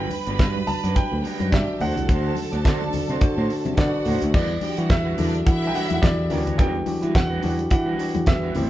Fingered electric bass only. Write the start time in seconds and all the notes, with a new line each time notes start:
0.27 G1
0.40 G2
0.84 F#2
1.12 D2
1.40 F#2
1.53 G2
1.81 D2
1.96 C2
2.09 D2
2.53 D2
2.66 D3
3.09 C3
3.37 A2
3.65 C3
3.78 D3
4.06 A2
4.22 D2
4.34 E2
4.78 E3
4.90 E2
5.19 E2
5.47 E3
5.91 E2
6.03 E2
6.31 D2
6.59 E2
7.03 E3
7.15 E2
7.44 E2
7.71 E3
8.15 E2
8.27 E2
8.56 A1